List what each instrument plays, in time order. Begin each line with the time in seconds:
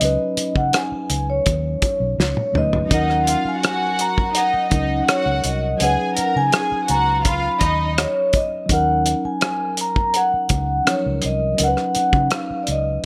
Already playing: tine electric piano F#3, vibraphone D#5
0.00 fingered electric bass C#2, tine electric piano C#4 D#4, closed hi-hat
0.04 tine electric piano B4
0.37 muted fingered electric bass stroke, closed hi-hat
0.56 fingered electric bass C#3, vibraphone F#5, kick
0.73 vibraphone G#5, cross-stick, closed hi-hat
0.92 muted fingered electric bass stroke
1.10 fingered electric bass C#2, closed hi-hat
1.30 vibraphone C#5
1.46 fingered electric bass D#2, kick, closed hi-hat
1.82 muted fingered electric bass stroke, kick, closed hi-hat
2.00 fingered electric bass B1
2.18 fingered electric bass C#2, vibraphone C#5, snare
2.37 high tom
2.52 fingered electric bass D2, tine electric piano F#3 C#4 D#4, mid tom
2.56 tine electric piano B4, vibraphone D#5
2.73 floor tom
2.86 tine electric piano F#3 C#4
2.90 fingered electric bass D#2, string section D#4 D#5, tine electric piano D#4 A#4, vibraphone F#5, kick, closed hi-hat
3.10 cross-stick
3.25 string section F4 F5, closed hi-hat
3.45 vibraphone G#5, muted fingered electric bass stroke
3.62 string section F#4 F#5, cross-stick, closed hi-hat
3.99 vibraphone A#5, closed hi-hat
4.18 kick
4.35 string section D#4 D#5, vibraphone F#5, closed hi-hat
4.54 muted fingered electric bass stroke
4.70 fingered electric bass C#2, tine electric piano F#3 C#4 D#4 A#4, string section D#4 D#5, kick, closed hi-hat
5.06 string section F#4 F#5, vibraphone C#5, cross-stick, closed hi-hat
5.26 fingered electric bass C#2
5.44 fingered electric bass C2, vibraphone D#5, closed hi-hat
5.77 fingered electric bass C#2, tine electric piano F#3 C#4, string section G#4 G#5, closed hi-hat
5.82 tine electric piano D#4 B4, vibraphone F#5
6.16 string section A#4 A#5, muted fingered electric bass stroke, closed hi-hat
6.36 fingered electric bass C#3, vibraphone G#5
6.52 string section G#4 G#5, cross-stick, closed hi-hat
6.72 muted fingered electric bass stroke
6.87 fingered electric bass C#2, string section F#4 F#5, vibraphone A#5, closed hi-hat
7.23 string section F4 F5, kick, closed hi-hat
7.27 vibraphone B5
7.60 fingered electric bass D#2, string section D#4 D#5, kick, closed hi-hat
7.93 vibraphone D#5
7.98 vibraphone C#5, cross-stick, closed hi-hat
8.33 vibraphone D#5, kick, closed hi-hat
8.66 fingered electric bass D#2, tine electric piano F#3 C#4, kick, closed hi-hat
8.71 tine electric piano D#4 A#4, vibraphone F#5
9.06 closed hi-hat
9.25 vibraphone G#5, muted fingered electric bass stroke
9.41 cross-stick, closed hi-hat
9.77 vibraphone A#5, closed hi-hat
9.96 kick
10.14 vibraphone F#5, closed hi-hat
10.34 muted fingered electric bass stroke
10.49 fingered electric bass C#2, kick, closed hi-hat
10.84 tine electric piano F3 C#4 D#4 A#4, cross-stick, closed hi-hat
10.89 tine electric piano F#3, vibraphone C#5
11.06 fingered electric bass C#2
11.22 fingered electric bass C2, vibraphone D#5, closed hi-hat
11.54 tine electric piano F#3 C#4
11.58 fingered electric bass C#2, tine electric piano D#4 A#4, closed hi-hat
11.64 vibraphone F#5
11.68 tine electric piano B4
11.77 cross-stick
11.95 muted fingered electric bass stroke, closed hi-hat
12.13 fingered electric bass C#3, kick
12.31 vibraphone F5, cross-stick, closed hi-hat
12.50 muted fingered electric bass stroke
12.63 vibraphone D5, closed hi-hat
12.68 fingered electric bass C#2, vibraphone D#5